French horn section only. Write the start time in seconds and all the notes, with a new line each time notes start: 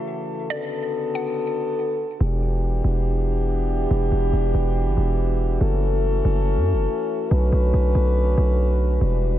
Already playing: C#3 E3 A3 F#4 A4
0.50 D3 B3 F#4 A4
2.21 E3 B3 D4 F#4 G4
5.61 A3 C#4 A4
7.31 D3 C#4 B4
9.01 E3 G3 D4 B4